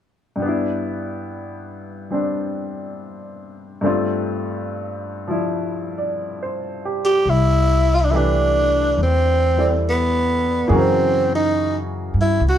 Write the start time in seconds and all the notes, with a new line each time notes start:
0.36 G2 G3
0.42 B3 D4
0.48 E4
2.10 G3 C4 D4
3.81 G2 G3 A3 C4
3.86 F4
5.28 F3 G3 E4
5.98 D5
6.43 C5
6.85 G4
7.05 G4
7.26 C2 E4
7.94 F4
8.00 E4
8.04 D4
8.11 E3 A3 D4 E4 G4
8.16 D4 B4
8.98 E2
9.03 C4
9.57 G3 E4 A4 D5
9.89 B3
10.67 F#2 C#3 E3 A#3 F#4 G#4
10.73 A#4
10.77 C4
11.35 D#4
12.14 G2
12.21 E4
12.40 C#2
12.49 F#4